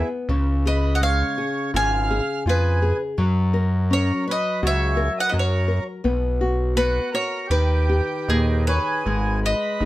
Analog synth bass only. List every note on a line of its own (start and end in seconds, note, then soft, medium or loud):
0.29 1.23 C#2 loud
1.74 2.21 G#1 loud
2.46 2.93 F2 medium
3.18 4.12 F#2 loud
4.63 5.09 C#2 loud
5.34 5.80 F#2 medium
6.05 7.00 B1 loud
7.50 8.01 D#2 loud
8.28 8.79 D#2 medium
9.06 9.54 G#1 medium
9.81 9.85 G#1 medium